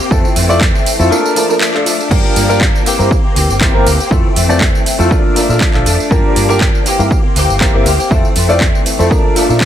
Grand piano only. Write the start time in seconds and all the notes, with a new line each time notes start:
0.11 A3 C4 E4 F4 A4
0.49 A3 C4 E4 F4 D5
0.99 A3 C4 E4 F4 A4
1.11 A#3 D4 F4 A4 A#4
1.36 A#3 D4 F4 A4 A#4
1.49 A#3 D4 F4 A4 A#4
1.74 D4 F4 A4
2.11 A#3 D4 F4 G4 A#4
2.49 A#3 D4 F4 G4 A#4
2.99 A#3 C4 E4 G4 A#4
3.61 A#3 C4 E4 G4 A#4
3.74 A#3 C4 E4 G4 A#4
4.10 A3 C4 E4 F4 A4
4.49 A3 C4 E4 F4 D5
4.99 A3 C4 E4 F4 A4
5.10 A#3 D4 F4 A4
5.36 A#3 D4 F4 A4 A#4
5.49 A#3 D4 F4 A4 A#4
5.74 D4 F4 A4
6.11 A#3 D4 F4 G4 A#4
6.49 A#3 D4 F4 G4 A#4
6.99 A#3 C4 E4 G4 A#4
7.60 A#3 C4 E4 G4 A#4
7.74 A#3 C4 E4 G4 A#4
8.10 A3 C4 E4 F4 A4
8.49 A3 C4 E4 F4 D5
8.99 A3 C4 E4 F4 A4
9.35 A#3 D4 F4 A4 A#4
9.49 A#3 D4 F4 A4 A#4